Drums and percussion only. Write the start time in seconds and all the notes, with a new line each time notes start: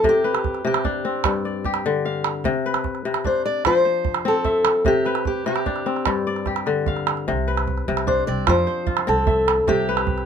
0.04 calabash thump
0.35 calabash click
0.44 calabash thump
0.55 calabash click
0.74 calabash click
0.84 calabash thump
1.24 calabash thump, calabash click
1.65 calabash thump
1.74 calabash click
2.24 calabash click
2.44 calabash thump
2.74 calabash click
2.84 calabash thump
2.95 calabash click
3.14 calabash click
3.25 calabash thump
3.65 calabash thump, calabash click
4.05 calabash thump
4.14 calabash click
4.45 calabash thump
4.65 calabash click
4.85 calabash thump
5.05 calabash click
5.15 calabash click
5.25 calabash thump
5.46 calabash click
5.56 calabash click
5.66 calabash thump
5.76 calabash click
5.87 calabash click
5.96 calabash click
6.05 calabash thump, calabash click
6.36 calabash click
6.46 calabash thump, calabash click
6.56 calabash click
6.66 calabash click
6.86 calabash thump
6.97 calabash click
7.07 calabash click
7.17 calabash click
7.28 calabash thump
7.57 calabash click
7.68 calabash thump
7.78 calabash click
7.97 calabash click
8.07 calabash thump
8.47 calabash thump, calabash click
8.87 calabash thump
8.97 calabash click
9.27 calabash thump
9.48 calabash click
9.67 calabash thump
9.97 calabash click
10.07 calabash thump
10.18 calabash click